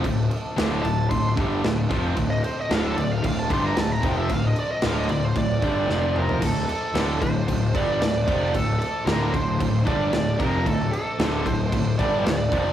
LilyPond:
<<
  \new Staff \with { instrumentName = "Lead electric guitar" } { \time 4/4 \key d \minor \tempo 4 = 113 << { r4. a''8 c'''8 r4. | r16 ees''16 c''16 ees''16 f''16 a'16 d''16 f''16 f''16 a''16 c'''16 bes''16 a''16 bes''16 g''16 e''16 | f''16 ees''16 d''16 ees''16 f''16 ees''16 d''16 c''16 d''4.~ d''16 r16 | r1 |
r1 | r1 | } \\ { r1 | r1 | r2. d''8 bes'8 | a'8 a'4 c''4 d''8 d''4 |
a'8 a'8 bes'8 c''4 d''8 d''8 bes'8 | a'8 a'4 c''4 d''8 d''4 | } >> }
  \new Staff \with { instrumentName = "Pipe organ" } { \time 4/4 \key d \minor << { a'1~ | a'1~ | a'2. c''4 | a'1~ |
a'1~ | a'1 | } \\ { d'1 | c'1~ | c'1 | d'1~ |
d'1~ | d'1 | } >> }
  \new Staff \with { instrumentName = "Pipe organ" } { \clef bass \time 4/4 \key d \minor f1~ | f1~ | f1 | f1~ |
f1~ | f1 | }
  \new Staff \with { instrumentName = "Distorted electric guitar" } { \clef bass \time 4/4 \key d \minor <d, a,>8 r8 <d, a, d>8 <d, a,>8 <d, a,>8 <g, d g>8 <d, a,>8 <f, c f>8 | <d, a,>8 r8 <d, a, d>8 <d, a,>8 <d, a,>8 <g, d g>8 <d, a,>8 <f, c f>8 | <d, a,>8 r8 <d, a, d>8 <d, a,>8 <d, a,>8 <g, d g>8 <f, c f>4 | <d, a,>8 r8 <d, a, d>8 <d, a,>8 <d, a,>8 <g, d g>8 <d, a,>8 <f, c f>8 |
<d, a,>8 r8 <d, a, d>8 <d, a,>8 <d, a,>8 <g, d g>8 <d, a,>8 <f, c f>8 | <d, a,>8 r8 <d, a, d>8 <d, a,>8 <d, a,>8 <g, d g>8 <d, a,>8 <f, c f>8 | }
  \new Staff \with { instrumentName = "Distorted electric guitar" } { \clef bass \time 4/4 \key d \minor <d, a,>8 r8 <d, a, d>8 <d, a,>8 <d, a,>8 <g, d g>8 <d, a,>8 <f, c f>8 | <d, a,>8 r8 <d, a, d>8 <d, a,>8 <d, a,>8 <g, d g>8 <d, a,>8 <f, c f>8 | <d, a,>8 r8 <d, a, d>8 <d, a,>8 <d, a,>8 <g, d g>8 <f, c f>4 | <d, a,>8 r8 <d, a, d>8 <d, a,>8 <d, a,>8 <g, d g>8 <d, a,>8 <f, c f>8 |
<d, a,>8 r8 <d, a, d>8 <d, a,>8 <d, a,>8 <g, d g>8 <d, a,>8 <f, c f>8 | <d, a,>8 r8 <d, a, d>8 <d, a,>8 <d, a,>8 <g, d g>8 <d, a,>8 <f, c f>8 | }
  \new Staff \with { instrumentName = "Picked electric bass" } { \clef bass \time 4/4 \key d \minor d,,8 r8 d,,8 d,,8 d,,8 g,,8 d,,8 f,,8 | d,,8 r8 d,,8 d,,8 d,,8 g,,8 d,,8 f,,8 | d,,8 r8 d,,8 d,,8 d,,8 g,,8 f,,4 | d,,8 r8 d,,8 d,,8 d,,8 g,,8 d,,8 f,,8 |
d,,8 r8 d,,8 d,,8 d,,8 g,,8 d,,8 f,,8 | d,,8 r8 d,,8 d,,8 d,,8 g,,8 d,,8 f,,8 | }
  \new DrumStaff \with { instrumentName = "Drums" } \drummode { \time 4/4 <cymc bd>8 cymc8 <cymc sn>8 cymc8 <cymc bd>8 <cymc bd>8 <cymc sn>8 <cymc bd>8 | <cymc bd>8 cymc8 <cymc sn>8 cymc8 <cymc bd>8 <cymc bd>8 <cymc sn>8 <cymc bd>8 | <cymc bd>8 cymc8 <cymc sn>8 cymc8 <cymc bd>8 <cymc bd>8 sn8 toml16 tomfh16 | <cymc bd>8 cymc8 <cymc sn>8 <cymc bd>8 <cymc bd>8 <cymc bd>8 <cymc sn>8 <cymc bd>8 |
<cymc bd>8 cymc8 <cymc sn>8 <cymc bd>8 <cymc bd>8 <cymc bd>8 <cymc sn>8 <cymc bd>8 | <cymc bd>8 cymc8 <cymc sn>8 <cymc bd>8 <cymc bd>8 <cymc bd>8 <cymc sn>8 <cymc bd>8 | }
>>